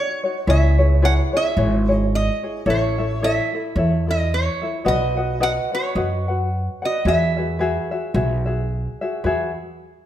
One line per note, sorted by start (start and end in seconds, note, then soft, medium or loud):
0.00 0.25 D#4 soft
0.00 0.23 F#4 medium
0.00 0.23 C#5 medium
0.00 0.50 C#5 medium
0.24 0.47 D#4 soft
0.24 0.47 F#4 soft
0.24 0.47 C#5 medium
0.47 1.19 C#2 loud
0.47 0.78 E4 medium
0.47 0.78 G#4 loud
0.47 0.79 B4 medium
0.47 0.77 C#5 medium
0.47 1.05 E5 medium
0.79 1.01 E4 medium
0.79 1.02 G#4 medium
0.79 1.01 B4 medium
0.79 1.02 C#5 medium
1.02 1.34 E4 medium
1.02 1.33 G#4 medium
1.02 1.34 B4 medium
1.02 1.32 C#5 medium
1.02 1.13 F#5 loud
1.33 1.56 E4 medium
1.33 1.57 G#4 medium
1.33 1.57 C#5 medium
1.33 1.91 E5 medium
1.57 2.28 G#1 loud
1.57 1.89 E4 medium
1.57 1.88 G#4 medium
1.57 1.88 B4 medium
1.57 1.87 C#5 medium
1.89 2.45 E4 soft
1.89 2.43 G#4 soft
1.89 2.43 C#5 medium
1.89 2.15 D#5 medium
2.15 2.70 D#5 medium
2.43 2.65 E4 soft
2.43 2.67 G#4 soft
2.43 2.65 C#5 medium
2.66 3.37 A1 loud
2.66 2.98 E4 medium
2.66 2.98 A4 medium
2.66 2.98 C#5 medium
2.66 2.97 E5 medium
2.70 3.25 C#5 medium
2.98 3.21 E4 medium
2.98 3.22 A4 medium
2.98 3.21 C#5 soft
2.98 3.21 E5 medium
3.22 3.53 E4 medium
3.22 3.53 A4 medium
3.22 3.53 C#5 medium
3.22 3.52 E5 medium
3.22 4.10 E5 loud
3.53 3.76 E4 soft
3.53 3.77 A4 medium
3.53 3.76 E5 medium
3.76 4.47 E2 loud
3.76 4.07 E4 medium
3.76 4.07 A4 medium
3.76 4.06 C#5 medium
3.76 4.06 E5 medium
4.07 4.62 E4 soft
4.07 4.62 A4 medium
4.07 4.33 D#5 medium
4.07 4.60 E5 medium
4.34 4.88 C#5 medium
4.62 4.85 E4 soft
4.62 4.85 A4 medium
4.62 4.84 E5 medium
4.85 5.57 B1 loud
4.85 5.17 F#4 medium
4.85 5.16 B4 loud
4.85 5.17 D#5 medium
4.85 5.43 D#5 medium
4.85 5.16 F#5 medium
5.17 5.40 F#4 medium
5.17 5.40 B4 soft
5.17 5.39 D#5 medium
5.17 5.40 F#5 medium
5.40 5.72 F#4 medium
5.40 5.72 B4 medium
5.40 5.72 D#5 medium
5.40 5.71 F#5 medium
5.40 5.51 F#5 loud
5.72 5.95 F#4 soft
5.72 5.96 B4 medium
5.72 6.86 C#5 medium
5.72 5.95 F#5 medium
5.95 6.67 F#2 loud
5.95 6.27 F#4 medium
5.95 6.28 B4 medium
5.95 6.27 D#5 medium
5.95 6.27 F#5 medium
6.28 6.84 F#4 soft
6.28 6.83 B4 soft
6.28 6.82 F#5 soft
6.82 7.05 F#4 soft
6.82 7.05 B4 medium
6.82 7.08 D#5 medium
6.82 7.05 F#5 medium
7.05 7.77 E2 loud
7.05 7.37 F#4 medium
7.05 7.37 G#4 medium
7.05 7.37 B4 medium
7.05 7.36 E5 loud
7.05 8.68 E5 medium
7.37 7.59 F#4 medium
7.37 7.59 G#4 medium
7.37 7.58 B4 medium
7.37 7.60 E5 medium
7.59 7.92 F#4 medium
7.59 7.91 G#4 loud
7.59 7.91 B4 medium
7.59 7.90 E5 medium
7.91 8.14 F#4 soft
7.91 8.14 G#4 medium
7.91 8.15 E5 medium
8.14 8.86 B1 loud
8.14 8.47 F#4 medium
8.14 8.46 G#4 medium
8.14 8.46 B4 medium
8.14 8.44 E5 medium
8.46 9.03 F#4 soft
8.46 9.02 G#4 medium
8.46 9.01 E5 medium
9.01 9.24 F#4 soft
9.01 9.25 G#4 medium
9.01 9.25 E5 medium
9.24 9.54 E2 medium
9.24 9.50 F#4 medium
9.24 9.51 G#4 loud
9.24 9.50 B4 medium
9.24 9.51 E5 medium